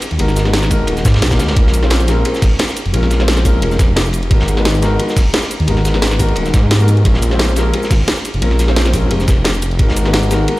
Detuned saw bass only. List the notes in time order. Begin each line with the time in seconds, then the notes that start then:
0.11 D#2
0.19 G#1
0.88 D#1
1.05 G#2
1.22 B1
1.39 D#2
1.49 C#2
1.57 A#1
2.42 G#1
2.86 F1
2.94 A#1
3.62 F1
3.79 F1
4.31 G#1
5.17 F#1
5.60 D#2
5.68 G#1
6.37 D#1
6.54 G#2
7.05 A#1
7.91 G#1
8.34 F1
8.42 A#1
9.11 F1
9.28 F1
9.79 G#1